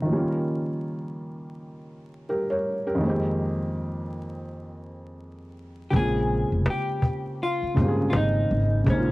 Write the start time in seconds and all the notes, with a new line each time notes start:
Already playing: F4
0.02 D#3 F3
0.10 G3 A#3 C#4
0.17 F4
2.29 G4 A#4
2.50 A#4 C#5
2.87 G4 A#4
2.94 F2 D#3
3.00 G#3 A#3
3.06 C4 G4
5.90 A#1 C#3 G#3 A#3 G4, cajon bass
5.96 C4 F4 G#4
6.16 cajon slap
6.33 cajon slap
6.52 F1
6.66 cajon slap
6.70 G4
6.88 cajon slap
7.02 cajon bass
7.26 cajon slap
7.42 F4, cajon slap
7.62 muted upright bass stroke, cajon slap
7.74 G1 C#3 G#3 A#3, cajon bass
7.79 C4 G4
7.88 G#4
8.00 cajon slap
8.10 F4, cajon slap
8.14 G#1 D#4
8.36 cajon slap
8.51 G#1, cajon slap
8.73 cajon slap
8.84 A#1 C#3 G#3 A#3, cajon bass
8.90 C#4 D#4 C5
8.98 F4